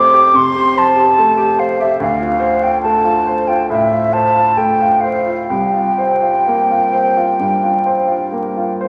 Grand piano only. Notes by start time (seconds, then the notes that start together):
Already playing: F1 F2 A3 G4 C5
0.13 G4
0.33 C3
0.54 G4
0.75 C5
0.96 G4
1.18 A3
1.37 G4
1.58 C5
1.79 G4
2.00 D2
2.20 F4
2.40 C5
2.62 F4
2.84 A3
3.04 F4
3.27 C5
3.48 F4
3.70 A2
3.91 F4
4.13 C5
4.34 F4
4.57 A3
4.81 F4
5.04 C5
5.26 F4
5.50 C2
5.74 F4
5.98 C5
6.22 F4
6.48 A#3
6.71 F4
6.93 C5
7.17 F4
7.39 G2
7.63 F4
7.86 C5
8.07 F4
8.32 A#3
8.57 F4
8.81 C5